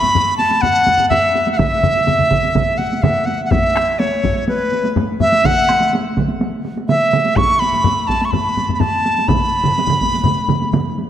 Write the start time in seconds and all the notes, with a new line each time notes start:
Already playing: B5
0.03 taiko low-mid, taiko high
0.15 taiko low-mid, taiko high
0.38 A5, taiko high
0.51 taiko high
0.61 F#5, taiko low-mid, taiko high
0.87 taiko low-mid, taiko high
0.99 taiko low-mid, taiko high
1.09 E5, taiko low-mid, taiko high
1.35 taiko high
1.47 taiko high
1.52 F#5
1.57 E5, taiko, taiko low-mid, taiko mid, taiko high
1.83 taiko low-mid, taiko mid, taiko high
1.95 taiko high
2.07 taiko low-mid, taiko mid, taiko high
2.19 taiko low-mid, taiko mid
2.31 taiko, taiko low-mid, taiko mid, taiko high
2.43 taiko high
2.55 taiko, taiko low-mid, taiko mid, taiko high
2.78 F#5, taiko high
2.92 taiko high
3.02 E5, taiko low-mid, taiko mid, taiko high
3.26 F#5, taiko high
3.45 F#5
3.51 E5, taiko, taiko low-mid, taiko high
3.76 taiko rim, taiko high
3.99 C#5, taiko high
4.23 taiko, taiko low-mid, taiko high
4.36 taiko high
4.48 B4, taiko high
4.72 taiko high
4.84 taiko high
4.96 taiko low-mid, taiko high
5.20 E5, taiko low-mid, taiko high
5.33 taiko high
5.44 F#5, taiko, taiko mid, taiko high
5.69 taiko rim, taiko high
5.81 taiko high
5.93 taiko high
6.17 taiko, taiko mid, taiko high
6.28 taiko high
6.41 taiko high
6.65 taiko high
6.77 taiko high
6.89 E5, taiko mid, taiko high
7.13 taiko mid, taiko high
7.26 taiko high
7.36 C#6, taiko, taiko low-mid, taiko high
7.60 B5, taiko high
7.73 taiko low-mid, taiko high
7.84 taiko low-mid, taiko high
8.07 A5, taiko, taiko high
8.22 C#6, taiko high
8.31 B5, taiko low-mid, taiko high
8.57 taiko low-mid, taiko high
8.69 taiko low-mid, taiko high
8.74 B5
8.80 A5, taiko low-mid, taiko high
9.05 taiko high
9.18 taiko high
9.28 B5, taiko, taiko low-mid, taiko mid, taiko high
9.64 taiko low-mid, taiko mid
9.78 taiko high
9.88 taiko low-mid, taiko mid
10.01 taiko, taiko high
10.14 taiko high
10.24 taiko low-mid, taiko mid, taiko high
10.48 taiko low-mid, taiko mid, taiko high
10.62 taiko high
10.73 taiko low-mid, taiko mid, taiko high
10.98 taiko high